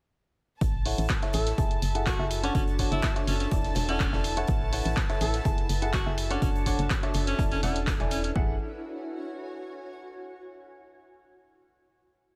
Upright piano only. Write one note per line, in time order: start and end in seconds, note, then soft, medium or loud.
0.86 1.05 E4 medium
0.86 1.05 A4 medium
0.86 1.05 C#5 medium
0.86 1.05 F#5 medium
1.22 1.55 E4 medium
1.22 1.55 A4 medium
1.22 1.55 C#5 medium
1.22 1.55 E5 medium
1.58 1.77 E4 medium
1.58 1.77 G#4 medium
1.58 1.77 A4 medium
1.58 1.77 A5 medium
1.95 2.06 E4 medium
1.95 2.06 G#4 medium
1.95 2.06 A4 medium
1.95 2.06 F#5 medium
2.19 2.40 E4 medium
2.19 2.40 G#4 medium
2.19 2.40 A4 medium
2.19 2.40 E5 medium
2.43 2.76 D4 medium
2.43 2.76 A4 medium
2.43 2.76 C#5 medium
2.43 2.76 F#5 loud
2.79 2.98 D4 medium
2.79 2.98 A4 medium
2.79 2.98 C#5 medium
2.79 2.98 F#5 medium
3.16 3.49 D4 medium
3.16 3.49 A4 medium
3.16 3.49 C#5 medium
3.16 3.49 E5 medium
3.52 3.71 E4 medium
3.52 3.71 A4 medium
3.52 3.71 D5 medium
3.52 3.71 A5 medium
3.89 4.00 E4 medium
3.89 4.00 A4 medium
3.89 4.00 D5 medium
3.89 4.00 F#5 medium
4.13 4.34 E4 medium
4.13 4.34 A4 medium
4.13 4.34 D5 medium
4.13 4.34 E5 medium
4.37 4.70 E4 medium
4.37 4.70 A4 medium
4.37 4.70 C#5 medium
4.37 4.70 F#5 loud
4.73 4.92 E4 medium
4.73 4.92 A4 medium
4.73 4.92 C#5 medium
4.73 4.92 F#5 medium
5.10 5.42 E4 medium
5.10 5.42 A4 medium
5.10 5.42 C#5 medium
5.10 5.42 E5 medium
5.45 5.64 E4 medium
5.45 5.64 G#4 medium
5.45 5.64 A4 medium
5.45 5.64 A5 medium
5.82 5.93 E4 medium
5.82 5.93 G#4 medium
5.82 5.93 A4 medium
5.82 5.93 F#5 medium
6.06 6.27 E4 medium
6.06 6.27 G#4 medium
6.06 6.27 A4 medium
6.06 6.27 E5 medium
6.30 6.63 D4 loud
6.30 6.63 A4 medium
6.30 6.63 C#5 medium
6.30 6.63 F#5 loud
6.66 6.85 D4 medium
6.66 6.85 A4 medium
6.66 6.85 C#5 medium
6.66 6.85 F#5 medium
7.03 7.36 D4 medium
7.03 7.36 A4 medium
7.03 7.36 C#5 medium
7.03 7.36 E5 medium
7.39 7.58 E4 medium
7.39 7.58 A4 medium
7.39 7.58 D5 medium
7.39 7.58 A5 medium
7.63 7.75 E4 medium
7.63 7.75 A4 medium
7.63 7.75 D5 medium
7.63 7.75 F#5 loud
8.00 8.18 E4 medium
8.00 8.18 A4 medium
8.00 8.18 D5 medium
8.00 8.18 G#5 medium
8.36 8.54 E4 medium
8.36 8.54 G#4 medium
8.36 8.54 A4 medium
8.36 8.54 F#5 medium